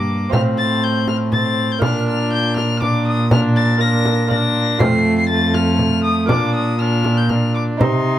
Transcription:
Already playing: G2 A#3 A#4 D5 D6
0.29 A2 C4 F4 C5 F6, frame drum
0.33 A2 C4
0.58 A6
0.84 G6
1.08 F6, frame drum
1.32 C4 A6, frame drum
1.72 G6
1.79 A#2 A#3 F4 D5, frame drum
1.83 A#2 D4 F6
2.09 F6
2.33 G6
2.57 F6, frame drum
2.82 D4 D6, frame drum
3.08 D#6
3.31 D4 F6, frame drum
3.56 A6
3.78 A#3 F4 D5 A#6
3.82 D4
4.05 frame drum
4.27 A#3 F4 D5 A#6, frame drum
4.32 D4
4.78 F2 A3 F4 C5 C7, frame drum
5.18 C7
5.29 A3 A6
5.54 F6, frame drum
5.79 frame drum
6.04 D#6
6.26 A#3 D4 F4 D5 D6, frame drum
6.30 A#2
6.55 D#6
6.79 D4 F6
7.04 frame drum
7.18 G6
7.29 D4 F6, frame drum
7.55 D6
7.77 C3 D#4 C5 C6, frame drum

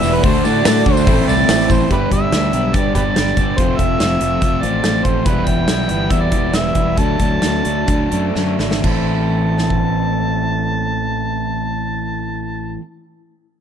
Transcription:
Already playing: E3 B3 E4 G4 B4 E5
0.02 E1 E2 B2 E3 B3 E4, tambourine
0.06 G3
0.14 B4
0.23 D2 D3 A3 D4 F#4 A4 C5, kick, open hi-hat
0.35 tambourine
0.44 A2 A3 D4 F#4 D5, tambourine
0.55 tambourine
0.65 A2 D3 A3 D4 F#4 A4 D5, snare, open hi-hat, tambourine
0.86 D2 D3 A3 D4 F#4 C5, kick, tambourine
0.97 tambourine
1.06 A1 A2 E3 A3 C4 E4 A4, kick, open hi-hat, tambourine
1.27 C2 A2 E3 A3 C4 E4 D5, tambourine
1.48 A1 E3 A3 C4 E4 A4, snare, open hi-hat, tambourine
1.60 snare
1.70 A1 A3 C4 E4 C5, kick, tambourine
1.81 tambourine
1.90 G1 G2 D3 G3 B3 D4 E4 G4 B4, kick, closed hi-hat
2.11 G1 G3 B3 D4 G4 E5, kick, closed hi-hat
2.32 D2 G2 D3 G3 B3 D4 G4, snare, closed hi-hat
2.53 B1 G3 B3 D4 G4, closed hi-hat
2.74 G2 D3 G3 B3 D4 G4 D5, kick, closed hi-hat
2.94 G1 G3 B3 D4 G4 B4 D5, kick, closed hi-hat
3.15 G1 G3 B3 D4 G4, snare, closed hi-hat
3.26 snare
3.37 G1 G3 B3 D4 G4, kick, closed hi-hat
3.57 F1 F3 A3 C4 F4 C5, kick, closed hi-hat
3.78 F1 A3 C4 F4 E5, kick, closed hi-hat
3.99 F1 F3 A3 C4 F4, snare, closed hi-hat
4.20 F1 A3 C4 F4, closed hi-hat
4.41 F1 F3 A3 C4 F4, kick, closed hi-hat
4.62 A1 F3 A3 C4 F4 D5, closed hi-hat
4.83 A1 F3 A3 C4 F4, snare, closed hi-hat
5.05 A1 A3 C4 F4 C5, kick, closed hi-hat
5.26 E1 E3 G3 B3 E4 B4, kick, closed hi-hat
5.47 E1 G3 B3 E4 G5, kick, closed hi-hat
5.68 B1 E3 G3 B3 E4, snare, closed hi-hat
5.89 G1 G3 B3 E4, closed hi-hat
6.11 E2 E3 G3 B3 E4 E5, kick, closed hi-hat
6.22 D5
6.32 E1 E3 G3 B3 E4, kick, closed hi-hat
6.54 E1 E3 G3 B3 E4 E5, snare, closed hi-hat
6.75 E1 G3 B3 E4, kick, closed hi-hat
6.97 D2 D3 F#3 A3 D4 A5, kick, closed hi-hat
7.19 D2 F#3 A3 D4, kick, closed hi-hat
7.42 D2 D3 F#3 A3 D4, snare, closed hi-hat
7.65 D2 F#3 A3 D4, closed hi-hat
7.87 D2 D3 F#3 A3 D4, kick, closed hi-hat
8.12 F#2 D3 F#3 A3 D4, closed hi-hat
8.35 F#2 D3 F#3 A3 D4, snare
8.59 G#1 F#3 A3 D4, snare
8.71 snare
8.83 A1 A2 E3 A3 C4 E4 C5 A5, kick, crash
9.58 snare
9.70 kick

